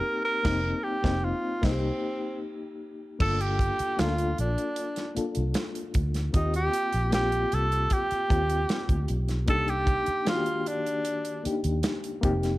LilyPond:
<<
  \new Staff \with { instrumentName = "Tenor saxophone" } { \time 4/4 \key c \dorian \tempo 4 = 76 bes'16 bes'8. g'8 f'8 c'4 r4 | a'16 g'8. f'8 d'4 r4. | ees'16 g'8. g'8 a'8 g'4. r8 | a'16 g'8. f'8 d'4 r4. | }
  \new Staff \with { instrumentName = "Reed electric piano" } { \time 4/4 \key c \dorian r8 <bes c' ees'>8 r16 <bes c' ees'>8 r16 <bes ees' g'>8 r4. | <bes d' f' a'>4 <bes d' f' a'>4. <bes d' f' a'>4. | <bes c' f' g'>4 <bes c' f' g'>4. <bes c' f' g'>4. | <bes d' ees' g'>4 <ees bes d' fis' g'>4. <bes d' ees' g'>4 <bes c' ees' g'>8 | }
  \new Staff \with { instrumentName = "Fingered electric bass" } { \clef bass \time 4/4 \key c \dorian r8 f,,8 r16 f,,8 r16 c,8 r4. | g,,8. r16 d,8 bes,,16 r4 c,16 r8 d,8 | ees,8 r16 bes,,8. c,8 r8 ees,8 r16 d,16 b,,8 | c,8. r2 ees,16 r8 f,,8 | }
  \new DrumStaff \with { instrumentName = "Drums" } \drummode { \time 4/4 r8 <cymc bd sn>8 r16 <bd sn>8. <cymc bd sn>4 r4 | <cymc bd>16 hh16 <hh bd>16 hh16 <hh sn>16 hh16 hh16 hh16 hh16 <hh sn>16 hh16 hh16 <hh sn>16 hh16 <hh bd>16 <hh sn>16 | <hh bd>16 hh16 hh16 hh16 <hh sn>16 hh16 hh16 hh16 <hh bd>16 hh16 <hh bd>16 hh16 <hh sn>16 <hh bd>16 hh16 <hh sn>16 | <hh bd>16 hh16 <hh bd>16 hh16 <hh sn>16 hh16 hh16 hh16 hh16 hh16 hh16 hh16 <hh sn>16 hh16 <hh bd>16 <hh sn>16 | }
>>